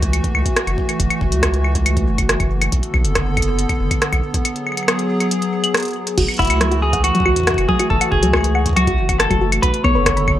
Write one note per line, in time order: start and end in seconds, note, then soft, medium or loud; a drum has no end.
0.00 0.21 C#2 loud
0.00 2.69 E3 medium
0.00 2.69 A3 medium
0.00 2.69 F#4 medium
0.00 kick loud
0.00 closed hi-hat soft
0.13 closed hi-hat medium
0.13 claves medium
0.24 kick loud
0.24 closed hi-hat soft
0.35 0.44 C#2 medium
0.35 claves medium
0.46 kick loud
0.46 closed hi-hat soft
0.56 cross-stick loud
0.56 closed hi-hat medium
0.67 0.76 F#1 loud
0.67 closed hi-hat soft
0.67 claves soft
0.78 kick medium
0.89 closed hi-hat soft
0.89 claves soft
1.00 1.08 F#1 medium
1.00 kick loud
1.00 closed hi-hat medium
1.10 closed hi-hat soft
1.10 claves medium
1.21 1.33 F#1 medium
1.21 kick loud
1.32 2.09 C#2 loud
1.32 closed hi-hat soft
1.43 kick loud
1.43 cross-stick loud
1.43 closed hi-hat medium
1.43 claves medium
1.54 closed hi-hat soft
1.64 claves soft
1.75 kick loud
1.75 closed hi-hat soft
1.86 closed hi-hat medium
1.86 claves medium
1.97 kick loud
1.97 closed hi-hat soft
2.07 2.37 F#1 medium
2.18 kick medium
2.18 closed hi-hat soft
2.18 claves soft
2.29 cross-stick loud
2.29 closed hi-hat medium
2.40 2.69 F#1 medium
2.40 kick loud
2.40 closed hi-hat soft
2.40 claves soft
2.62 closed hi-hat medium
2.62 claves medium
2.72 2.81 B1 loud
2.72 4.43 D3 medium
2.72 6.14 B3 medium
2.72 4.43 A4 medium
2.72 kick loud
2.72 closed hi-hat medium
2.83 closed hi-hat soft
2.94 3.06 B1 loud
2.94 kick loud
2.94 claves medium
3.05 3.66 F#1 medium
3.05 closed hi-hat soft
3.15 kick loud
3.15 cross-stick loud
3.15 closed hi-hat medium
3.15 claves medium
3.37 kick loud
3.37 closed hi-hat soft
3.37 claves medium
3.42 closed hi-hat medium
3.59 closed hi-hat medium
3.69 kick loud
3.69 closed hi-hat soft
3.69 claves medium
3.80 3.89 F#1 medium
3.91 kick loud
3.91 closed hi-hat soft
3.91 claves medium
4.02 cross-stick loud
4.02 closed hi-hat medium
4.13 4.21 B1 loud
4.13 kick medium
4.13 closed hi-hat soft
4.13 claves medium
4.34 kick loud
4.34 closed hi-hat medium
4.45 6.16 F#3 medium
4.45 6.16 G#4 medium
4.45 closed hi-hat medium
4.45 claves medium
4.56 closed hi-hat soft
4.67 claves medium
4.72 claves soft
4.77 closed hi-hat medium
4.77 claves soft
4.83 claves soft
4.88 cross-stick loud
4.88 closed hi-hat medium
4.88 claves medium
4.99 closed hi-hat soft
5.20 closed hi-hat soft
5.20 claves medium
5.31 closed hi-hat medium
5.42 closed hi-hat soft
5.64 closed hi-hat soft
5.64 claves medium
5.74 cross-stick loud
5.74 closed hi-hat medium
5.77 closed hi-hat soft
5.80 closed hi-hat soft
5.83 closed hi-hat soft
5.85 closed hi-hat soft
5.88 closed hi-hat soft
5.91 closed hi-hat soft
5.93 closed hi-hat soft
6.07 closed hi-hat medium
6.18 6.26 F#1 loud
6.18 9.60 E3 medium
6.18 9.60 A3 medium
6.18 6.26 F#4 loud
6.18 9.60 F#4 medium
6.18 kick loud
6.18 closed hi-hat medium
6.18 crash medium
6.28 closed hi-hat soft
6.28 claves medium
6.31 closed hi-hat soft
6.34 closed hi-hat soft
6.37 6.51 F#1 medium
6.37 6.82 E4 medium
6.37 kick loud
6.37 closed hi-hat soft
6.39 6.45 F#5 loud
6.39 closed hi-hat soft
6.42 closed hi-hat soft
6.45 closed hi-hat soft
6.47 7.12 C#2 loud
6.47 closed hi-hat soft
6.50 closed hi-hat medium
6.50 claves medium
6.61 6.66 F#3 loud
6.61 cross-stick loud
6.61 closed hi-hat medium
6.72 6.80 F#4 loud
6.72 closed hi-hat soft
6.82 7.03 G#4 medium
6.93 6.99 F#5 loud
6.93 kick loud
6.93 closed hi-hat medium
7.04 7.68 F#4 medium
7.04 closed hi-hat medium
7.04 claves medium
7.15 7.20 F#3 loud
7.15 closed hi-hat soft
7.20 kick loud
7.26 7.34 C#2 medium
7.26 7.34 F#4 loud
7.26 claves medium
7.36 kick medium
7.36 closed hi-hat medium
7.40 kick medium
7.43 kick medium
7.47 7.53 F#5 loud
7.47 kick medium
7.47 cross-stick loud
7.47 closed hi-hat medium
7.51 kick medium
7.54 7.67 F#1 loud
7.54 kick loud
7.54 closed hi-hat soft
7.54 claves medium
7.69 7.74 F#3 medium
7.69 7.90 G#4 medium
7.69 kick loud
7.79 7.88 F#4 loud
7.79 closed hi-hat medium
7.79 claves medium
7.90 7.99 F#1 loud
7.90 8.11 A4 medium
7.90 kick loud
8.01 8.07 F#5 loud
8.01 closed hi-hat medium
8.01 claves medium
8.12 8.24 F#1 loud
8.12 8.72 G#4 loud
8.12 kick loud
8.23 9.00 C#2 loud
8.23 8.28 F#3 loud
8.23 closed hi-hat medium
8.33 8.42 F#4 loud
8.33 kick loud
8.33 cross-stick loud
8.33 claves soft
8.37 claves soft
8.41 closed hi-hat medium
8.41 claves soft
8.55 8.61 F#5 loud
8.55 claves medium
8.66 kick loud
8.66 closed hi-hat medium
8.69 kick medium
8.73 8.82 F#3 loud
8.73 9.17 F#4 medium
8.73 kick medium
8.73 closed hi-hat medium
8.73 claves medium
8.87 8.96 F#4 loud
8.87 kick loud
8.87 closed hi-hat soft
8.98 9.27 F#1 medium
9.09 9.15 F#5 medium
9.09 kick loud
9.09 closed hi-hat medium
9.09 claves medium
9.19 9.50 A4 medium
9.19 cross-stick loud
9.19 closed hi-hat medium
9.30 9.60 F#1 medium
9.30 9.36 F#3 loud
9.30 kick loud
9.30 closed hi-hat soft
9.30 claves soft
9.41 9.50 F#4 medium
9.52 closed hi-hat medium
9.52 claves medium
9.62 9.72 B1 loud
9.62 10.39 D3 medium
9.62 10.39 B3 medium
9.62 10.39 A4 medium
9.62 9.83 B4 medium
9.62 9.69 B5 loud
9.62 kick loud
9.62 closed hi-hat medium
9.74 closed hi-hat soft
9.84 9.97 B1 medium
9.84 9.90 B3 loud
9.84 10.39 C#5 loud
9.84 kick loud
9.84 claves medium
9.95 10.39 F#1 loud
9.95 10.04 B4 loud
10.06 kick loud
10.06 cross-stick loud
10.06 closed hi-hat medium
10.06 claves medium
10.17 10.22 B5 loud
10.17 closed hi-hat soft
10.28 kick loud
10.28 claves medium